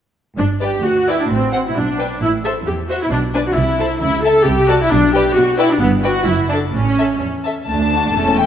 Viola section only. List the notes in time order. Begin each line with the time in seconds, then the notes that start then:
0.38 D4
0.62 G4
0.84 F#4
1.08 E4
1.20 D4
1.31 C4
1.54 C4
1.67 E4
1.77 D4
2.22 E4
2.44 A4
2.67 G4
2.89 F#4
3.02 E4
3.12 D4
3.35 D4
3.47 F#4
3.56 E4
4.02 E4
4.25 A4
4.47 G4
4.70 F#4
4.82 E4
4.92 D4
5.14 G4
5.35 F#4
5.59 E4
5.71 D4
5.81 B3
6.04 F#4
6.26 E4
6.50 D4
6.74 C#4
7.68 A3 D4
8.15 C#4